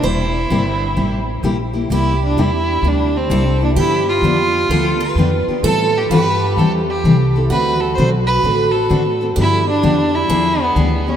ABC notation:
X:1
M:4/4
L:1/8
Q:"Swing" 1/4=129
K:Gmix
V:1 name="Steel-string acoustic guitar"
c8 | G6 A2 | G4 A B2 z | A2 G6 |
^F8 | G4 _A4 |]
V:2 name="Violin"
E6 z2 | E D E2 D C2 D | E F6 z | A G B2 A G2 z |
B A c B2 A2 z | E D2 E2 B,2 ^C |]
V:3 name="Steel-string acoustic guitar"
[C,G,_B,EG] z [C,G,B,EG] z [C,G,B,EG] z [C,G,B,EG] [B,EG] | [C,G,_B,EG] z [C,G,B,EG] z [C,G,B,EG] z [C,G,B,EG] [B,EG] | [D,F,B,DG] z [D,F,B,DG] z [D,F,B,DG] z [D,F,B,DG] [B,DG] | [E,G,CEA] z [E,G,CEA] z [E,G,CEA] z [E,G,CEA] [CEA] |
[D,A,C^FA] z [D,A,CFA] z [D,A,CFA] z [D,A,CFA] [CFA] | [D,F,B,DG] z [D,F,B,DG] z [D,F,B,DG] z [D,F,B,DG] [B,DG] |]
V:4 name="Upright bass" clef=bass
E,,,2 G,,,2 A,,,2 _B,,,2 | C,,2 E,,2 D,,2 C,,2 | G,,2 F,,2 D,,2 F,, z | A,,2 G,,2 E,,2 C,,2 |
D,,2 B,,,2 A,,,2 A,,2 | G,,2 F,,2 E,,2 D,,2 |]